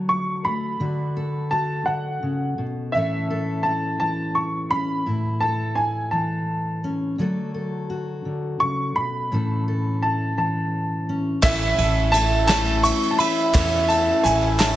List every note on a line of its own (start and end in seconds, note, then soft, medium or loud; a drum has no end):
0.00 0.76 D3 medium
0.00 0.76 F#3 soft
0.00 0.45 A3 soft
0.00 0.77 F#4 soft
0.00 1.16 A4 medium
0.09 0.46 C#6 medium
0.45 2.95 A3 soft
0.45 1.47 B5 medium
0.80 1.86 D3 medium
0.80 1.51 F#4 medium
1.17 2.97 A4 soft
1.51 2.90 F#4 soft
1.51 1.88 A5 medium
1.86 2.22 D3 soft
1.86 2.62 F#5 medium
2.23 2.58 C#3 soft
2.58 2.94 B2 soft
2.92 5.02 A2 medium
2.92 4.00 E3 soft
2.92 4.70 C#4 soft
2.92 3.66 E5 medium
2.96 3.65 E4 soft
2.96 3.30 A4 soft
3.30 5.42 A4 medium
3.63 5.03 E4 soft
3.63 3.97 A5 medium
4.00 6.11 E3 soft
4.00 4.36 A5 medium
4.35 4.72 C#6 medium
4.71 5.02 C#4 soft
4.71 5.44 B5 medium
5.06 7.15 A2 medium
5.06 5.76 E4 soft
5.40 7.21 A4 soft
5.40 5.74 A5 medium
5.75 7.15 E4 soft
5.75 6.13 G#5 medium
6.11 7.19 E3 soft
6.11 6.88 A5 medium
6.84 7.15 C#4 soft
7.18 8.24 D3 medium
7.18 9.27 F#3 soft
7.18 9.32 A3 soft
7.18 7.89 F#4 soft
7.18 7.54 A4 medium
7.54 9.34 A4 medium
7.90 9.27 F#4 medium
8.25 8.61 D3 soft
8.60 8.96 C#3 soft
8.60 8.97 C#6 medium
8.96 9.32 B2 medium
8.96 10.05 B5 medium
9.32 11.39 A2 medium
9.32 10.36 E3 soft
9.32 11.08 C#4 soft
9.32 10.01 E4 medium
9.32 9.67 A4 medium
9.68 11.39 A4 medium
10.02 11.39 E4 soft
10.02 10.35 A5 medium
10.37 13.54 E3 soft
10.37 11.13 A5 medium
11.09 11.40 C#4 soft
11.42 11.71 A1 medium
11.42 13.50 A1 medium
11.42 12.13 A2 medium
11.42 13.50 A2 medium
11.42 14.76 E3 medium
11.42 12.12 E3 medium
11.42 13.52 A3 medium
11.42 13.50 A3 medium
11.42 12.14 A3 loud
11.42 14.76 C#4 medium
11.42 13.50 C#4 medium
11.42 12.14 C#4 medium
11.42 12.12 E4 loud
11.42 13.50 E4 medium
11.42 14.76 E4 loud
11.42 12.14 E4 medium
11.42 13.50 C#5 medium
11.42 12.15 E5 loud
11.42 13.50 E5 medium
11.42 kick loud
11.42 clap loud
11.42 ride loud
11.42 shaker loud
11.78 12.90 A1 medium
11.78 13.19 A4 medium
11.78 ride medium
12.12 12.49 E3 medium
12.12 12.48 A3 medium
12.12 12.48 C#4 medium
12.12 12.83 E4 medium
12.12 12.46 A5 loud
12.12 clap soft
12.12 ride medium
12.12 shaker loud
12.16 12.47 E4 medium
12.31 clap soft
12.47 13.20 A2 medium
12.47 13.20 E3 medium
12.47 13.21 A3 medium
12.47 13.19 C#4 medium
12.47 13.17 E4 medium
12.47 13.89 C#5 medium
12.47 12.81 A5 loud
12.47 snare loud
12.47 clap medium
12.47 ride medium
12.66 clap soft
12.83 13.53 E4 medium
12.83 13.13 C#6 loud
12.83 clap soft
12.83 ride medium
12.83 shaker loud
13.03 shaker soft
13.11 13.18 A5 medium
13.18 13.54 A3 soft
13.18 13.54 C#4 soft
13.18 13.54 E4 medium
13.18 14.60 E5 medium
13.18 13.85 B5 loud
13.18 ride medium
13.18 shaker soft
13.37 shaker soft
13.54 14.76 A1 medium
13.54 14.10 E2 loud
13.54 14.24 A2 medium
13.54 14.76 A2 medium
13.54 14.23 E3 medium
13.54 14.76 A3 medium
13.54 14.24 A3 medium
13.54 14.76 C#4 medium
13.54 14.24 C#4 loud
13.54 14.23 E4 loud
13.54 14.76 E4 medium
13.54 14.25 E4 loud
13.54 14.76 C#5 medium
13.54 14.76 E5 medium
13.54 kick loud
13.54 clap medium
13.54 ride medium
13.54 shaker loud
13.88 14.76 A4 medium
13.88 14.22 A5 medium
13.88 ride medium
14.23 14.76 A1 medium
14.23 14.59 E3 medium
14.23 14.60 A3 medium
14.23 14.59 C#4 medium
14.23 14.76 E4 medium
14.23 14.59 E4 medium
14.23 14.60 G#5 loud
14.23 clap soft
14.23 ride medium
14.23 shaker loud
14.42 clap soft
14.59 14.76 A2 medium
14.59 14.76 E3 medium
14.59 14.76 A3 medium
14.59 14.76 C#4 medium
14.59 14.76 E4 medium
14.59 14.76 C#5 medium
14.59 14.76 A5 medium
14.59 snare loud
14.59 clap loud
14.59 ride medium